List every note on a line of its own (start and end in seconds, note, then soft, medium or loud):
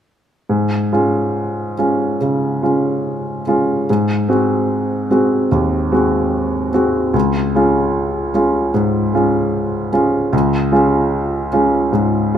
0.49 0.91 G#2 soft
0.93 1.74 G#3 soft
0.93 1.74 C#4 soft
0.93 1.74 F4 soft
1.78 2.17 G#3 soft
1.78 2.17 C#4 soft
1.78 2.17 F4 soft
2.21 2.62 C#3 soft
2.62 3.42 G#3 soft
2.62 3.42 C#4 soft
2.62 3.42 F4 soft
3.47 3.84 G#3 soft
3.47 3.84 C#4 soft
3.47 3.85 F4 soft
3.90 4.29 G#2 soft
4.28 5.07 G#3 soft
4.28 5.07 C4 soft
4.28 5.07 F#4 soft
5.10 5.47 G#3 soft
5.10 5.47 C4 soft
5.10 5.48 F#4 soft
5.52 5.91 D#2 soft
5.92 6.69 G#3 soft
5.92 6.70 C4 soft
5.92 6.70 F#4 soft
6.73 7.10 G#3 soft
6.73 7.10 C4 soft
6.73 7.11 F#4 soft
7.14 7.53 C#2 soft
7.55 8.31 G#3 soft
7.55 8.31 C#4 soft
7.55 8.31 F4 soft
8.34 8.70 G#3 soft
8.34 8.70 C#4 soft
8.34 8.70 F4 soft
8.74 9.12 G#2 soft
9.13 9.89 G#3 soft
9.13 9.89 C#4 soft
9.13 9.90 F4 soft
9.92 10.28 G#3 soft
9.92 10.29 C#4 soft
9.92 10.29 F4 soft
10.33 10.71 C#2 soft
10.72 11.48 G#3 soft
10.72 11.48 C#4 soft
10.72 11.48 F4 soft
11.53 11.89 G#3 soft
11.53 11.89 C#4 soft
11.53 11.89 F4 soft
11.93 12.33 G#2 soft
12.34 12.38 G#3 soft
12.34 12.38 F4 soft